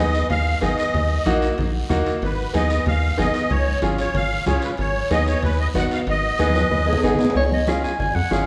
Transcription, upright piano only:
0.00 0.20 B3 medium
0.00 0.20 D#4 medium
0.00 0.20 G#4 medium
0.61 0.84 B3 medium
0.61 0.84 D#4 medium
0.61 0.84 G#4 medium
1.26 1.48 A#3 medium
1.26 1.48 D#4 medium
1.26 1.49 F#4 medium
1.89 2.12 A#3 medium
1.89 2.12 D#4 medium
1.89 2.13 F#4 medium
2.53 2.76 B3 medium
2.53 2.77 D#4 medium
2.53 2.77 G#4 medium
3.17 3.40 B3 medium
3.17 3.40 D#4 medium
3.17 3.41 G#4 medium
3.82 4.05 C#4 medium
3.82 4.05 F4 medium
3.82 4.05 G#4 medium
4.46 4.69 C#4 medium
4.46 4.69 F4 medium
4.46 4.69 G#4 medium
5.11 5.33 B3 medium
5.11 5.33 D#4 medium
5.11 5.33 G#4 medium
5.75 5.97 B3 medium
5.75 5.97 D#4 medium
5.75 5.98 F#4 medium
6.39 6.61 B3 medium
6.39 6.62 D#4 medium
6.39 6.62 G#4 medium
7.03 7.26 B3 medium
7.03 7.26 D#4 medium
7.03 7.26 G#4 medium
7.67 7.90 C#4 medium
7.67 7.90 F4 medium
7.67 7.90 G#4 medium
8.31 8.46 C#4 medium
8.31 8.46 F4 medium
8.31 8.46 G#4 medium

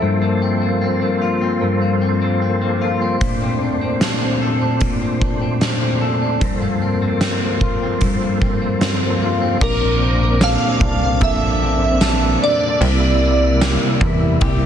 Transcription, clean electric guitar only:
0.00 1.60 G2 medium
0.00 0.21 C4 medium
0.00 0.25 A4 medium
0.22 0.61 A#3 medium
0.42 0.81 C4 soft
0.62 1.01 A#3 soft
0.82 1.41 C4 soft
1.02 1.81 A#3 medium
1.22 2.81 F4 medium
1.41 2.01 C4 medium
1.62 3.22 G2 medium
1.82 2.21 A#3 soft
2.01 2.41 C4 soft
2.22 2.61 A#3 soft
2.42 3.01 C4 soft
2.62 3.41 A#3 soft
2.82 4.41 F4 medium
3.02 3.42 C4 medium
3.22 4.80 A#2 medium
3.42 3.81 C4 soft
3.62 4.01 D4 soft
3.81 4.21 C4 soft
4.02 4.61 D4 medium
4.22 5.01 C4 medium
4.42 6.01 A4 medium
4.61 5.21 D4 soft
4.82 6.42 A#2 medium
5.01 5.41 C4 soft
5.22 5.61 D4 soft
5.42 5.81 C4 soft
5.61 6.21 D4 medium
5.82 6.61 C4 medium
6.01 6.65 A4 medium
6.22 6.81 D4 soft
6.41 8.01 G2 medium
6.62 7.01 A#3 medium
6.82 7.21 C4 soft
7.02 7.41 A#3 soft
7.21 7.82 C4 soft
7.41 8.21 A#3 medium
7.62 9.21 F4 medium
7.82 8.42 C4 soft
8.02 9.70 G2 medium
8.22 8.61 A#3 soft
8.42 8.82 C4 soft
8.62 9.01 A#3 soft
8.82 9.41 C4 medium
9.02 10.01 A#3 medium
9.22 10.41 F4 medium
9.42 10.01 C4 medium
9.62 12.81 A#2 medium
10.01 11.61 C4 medium
10.42 11.20 A4 medium
10.82 12.40 D4 medium
11.21 12.00 A4 medium
11.62 13.21 C4 medium
12.01 12.89 A4 medium
12.42 12.90 D4 medium
12.81 14.66 C3 loud
13.22 14.66 A#3 medium
13.62 14.41 G4 medium
14.02 14.66 E4 medium
14.42 14.66 G4 medium

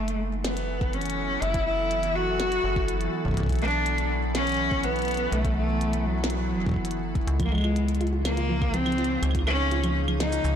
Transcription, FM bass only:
0.00 1.38 F#1 loud
1.42 2.59 F#1 loud
2.64 3.08 F#1 loud
3.25 3.34 F#1 loud
3.37 5.28 B1 medium
5.32 6.56 B1 medium
6.54 7.23 F#1 medium
7.27 9.18 C#2 loud
9.23 10.40 C#2 loud
10.44 10.56 C#2 loud

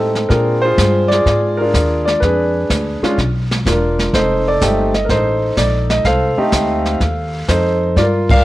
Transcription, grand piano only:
0.00 0.28 C4 soft
0.00 0.28 D#4 soft
0.00 0.32 A4 medium
0.29 1.65 C4 soft
0.29 1.60 D4 soft
0.29 0.64 F4 soft
0.29 0.63 G#4 soft
0.29 0.63 A#4 medium
0.62 1.11 F4 medium
0.62 1.11 G#4 medium
0.62 1.12 C5 medium
1.08 1.59 D5 loud
1.13 1.60 F4 medium
1.13 2.04 G#4 medium
1.57 2.19 D4 medium
1.57 2.19 F4 medium
1.57 2.03 A#4 medium
2.05 2.22 D5 medium
2.20 3.02 D4 medium
2.20 3.15 G#4 soft
2.20 2.98 B4 medium
3.03 3.16 G#3 medium
3.03 3.17 C#4 medium
3.03 3.17 D4 medium
3.03 3.17 F4 medium
3.67 4.11 D4 soft
3.67 4.11 F4 soft
3.67 4.11 A#4 medium
4.14 4.60 D#4 medium
4.14 4.47 A4 medium
4.14 4.45 C5 medium
4.48 5.10 A4 medium
4.48 4.92 D5 medium
4.62 4.91 A3 medium
4.62 4.91 C4 soft
4.62 4.91 D#4 medium
4.62 4.91 G4 medium
4.95 5.04 D#5 medium
5.05 5.09 A#4 medium
5.10 6.02 D#4 medium
5.10 6.02 A4 soft
5.10 5.54 C5 medium
5.57 5.91 D5 medium
5.90 6.04 D#5 medium
6.05 7.45 A4 medium
6.05 7.45 C5 medium
6.05 7.45 F5 medium
6.38 6.98 A3 medium
6.38 6.98 C4 medium
6.38 6.98 D#4 medium
6.38 6.98 G4 medium
7.49 7.94 D#4 medium
7.49 7.94 A4 medium
7.49 7.93 C5 medium
7.97 8.44 F4 medium
7.97 8.31 A#4 medium
7.97 8.04 D5 medium
8.31 8.44 A#4 medium
8.31 8.44 D5 medium
8.31 8.44 F5 medium

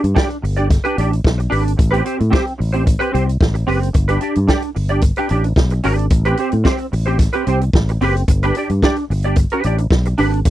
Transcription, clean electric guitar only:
0.02 muted clean electric guitar stroke soft
0.15 0.35 D4 medium
0.15 0.29 G4 medium
0.15 0.29 D5 medium
0.29 muted clean electric guitar stroke medium
0.42 muted clean electric guitar stroke soft
0.57 0.68 D4 soft
0.57 0.69 G4 medium
0.57 0.70 D5 medium
0.69 muted clean electric guitar stroke medium
0.84 0.96 D4 medium
0.84 0.97 G4 medium
0.84 0.99 B4 medium
0.97 1.13 D4 medium
0.97 1.11 G4 medium
0.97 1.11 D5 medium
1.11 muted clean electric guitar stroke soft
1.38 muted clean electric guitar stroke soft
1.50 1.70 D4 medium
1.50 1.65 G4 medium
1.50 1.64 B4 medium
1.65 muted clean electric guitar stroke soft
1.77 muted clean electric guitar stroke soft
1.91 2.03 C4 medium
1.91 2.04 G4 medium
1.91 2.06 B4 loud
2.04 2.21 C4 medium
2.04 2.19 G4 medium
2.04 2.19 C5 medium
2.19 muted clean electric guitar stroke soft
2.30 2.51 C4 medium
2.30 2.46 G4 loud
2.30 2.45 C5 loud
2.46 muted clean electric guitar stroke medium
2.58 muted clean electric guitar stroke soft
2.73 2.84 C4 medium
2.73 2.85 G4 medium
2.73 2.86 C5 medium
2.85 muted clean electric guitar stroke medium
2.99 3.10 C4 medium
2.99 3.12 G4 medium
2.99 3.13 B4 medium
3.12 3.29 C4 medium
3.12 3.26 G4 medium
3.12 3.26 C5 medium
3.26 muted clean electric guitar stroke medium
3.54 muted clean electric guitar stroke soft
3.67 3.87 C4 medium
3.67 3.81 G4 medium
3.67 3.80 B4 medium
3.81 muted clean electric guitar stroke medium
3.93 muted clean electric guitar stroke soft
4.08 4.19 D4 medium
4.08 4.21 G4 medium
4.08 4.22 B4 medium
4.21 4.37 D4 medium
4.21 4.36 G4 medium
4.21 4.35 D5 medium
4.36 muted clean electric guitar stroke soft
4.48 4.68 D4 medium
4.48 4.63 G4 medium
4.48 4.62 D5 medium
4.63 muted clean electric guitar stroke soft
4.75 muted clean electric guitar stroke soft
4.89 5.02 D4 soft
4.89 5.02 G4 medium
4.89 5.04 D5 medium
5.17 5.29 D4 medium
5.17 5.30 G4 medium
5.17 5.31 B4 medium
5.30 5.46 D4 medium
5.30 5.44 G4 medium
5.30 5.44 D5 medium
5.44 muted clean electric guitar stroke soft
5.71 muted clean electric guitar stroke soft
5.84 6.04 D4 medium
5.84 5.98 G4 medium
5.84 5.96 B4 loud
5.98 muted clean electric guitar stroke soft
6.11 muted clean electric guitar stroke soft
6.25 6.37 C4 medium
6.25 6.38 G4 medium
6.25 6.40 B4 medium
6.38 6.54 C4 medium
6.38 6.52 G4 medium
6.38 6.51 C5 medium
6.52 muted clean electric guitar stroke soft
6.64 6.85 C4 medium
6.64 6.79 G4 medium
6.64 6.79 C5 medium
6.79 muted clean electric guitar stroke soft
6.92 muted clean electric guitar stroke medium
7.06 7.18 C4 medium
7.06 7.18 G4 medium
7.06 7.20 C5 medium
7.19 muted clean electric guitar stroke soft
7.33 7.45 C4 medium
7.33 7.46 G4 medium
7.33 7.48 B4 medium
7.46 7.63 C4 medium
7.46 7.61 G4 medium
7.46 7.61 C5 medium
7.61 muted clean electric guitar stroke soft
7.89 muted clean electric guitar stroke soft
8.01 8.21 C4 medium
8.01 8.16 G4 loud
8.01 8.15 B4 loud
8.16 muted clean electric guitar stroke soft
8.29 muted clean electric guitar stroke soft
8.43 8.55 D4 medium
8.43 8.56 G4 medium
8.43 8.57 B4 medium
8.56 8.72 D4 medium
8.56 8.71 G4 medium
8.56 8.70 D5 medium
8.70 muted clean electric guitar stroke soft
8.83 9.03 D4 medium
8.83 8.97 G4 medium
8.83 8.97 D5 loud
8.97 muted clean electric guitar stroke medium
9.10 muted clean electric guitar stroke soft
9.24 9.37 D4 medium
9.24 9.37 G4 medium
9.24 9.39 D5 medium
9.38 muted clean electric guitar stroke soft
9.52 9.63 D4 medium
9.52 9.64 G4 medium
9.52 9.66 B4 medium
9.64 9.80 D4 medium
9.64 9.79 G4 medium
9.64 9.78 D5 medium
9.78 muted clean electric guitar stroke medium
10.06 muted clean electric guitar stroke medium
10.18 10.38 D4 medium
10.18 10.33 G4 medium
10.18 10.31 B4 loud
10.33 muted clean electric guitar stroke soft
10.45 muted clean electric guitar stroke medium

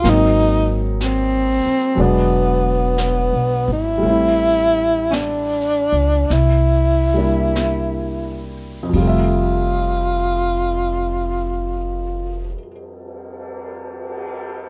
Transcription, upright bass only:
0.04 1.62 G#1 medium
1.66 muted upright bass stroke soft
1.98 3.29 E1 medium
3.33 3.66 B1 medium
3.68 4.01 G#1 medium
4.03 5.88 A1 medium
5.92 6.28 C#2 medium
6.30 8.91 C2 medium
8.94 12.53 F1 medium

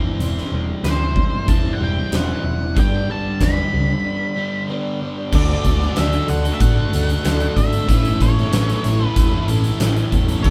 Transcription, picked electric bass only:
0.19 0.39 E1 medium
0.52 0.71 E1 medium
0.83 1.22 D2 medium
1.48 1.68 E1 medium
1.80 2.00 E1 medium
2.12 2.32 E1 medium
2.44 2.77 E1 medium
2.77 2.96 G1 medium
3.09 3.28 G1 medium
3.41 3.60 E2 medium
3.73 3.92 C#2 medium
5.32 5.53 D2 loud
5.65 5.85 D2 medium
5.97 6.17 D2 medium
6.29 6.50 D2 medium
6.61 6.81 A2 medium
6.93 7.13 D2 medium
7.25 7.46 D2 medium
7.57 7.89 G#1 medium
7.89 8.09 A1 medium
8.20 8.41 A1 medium
8.52 8.73 A1 medium
8.84 9.05 A1 medium
9.16 9.37 E2 medium
9.48 9.68 A1 medium
9.80 10.00 A1 medium
10.13 10.33 E2 medium
10.44 10.50 D2 loud

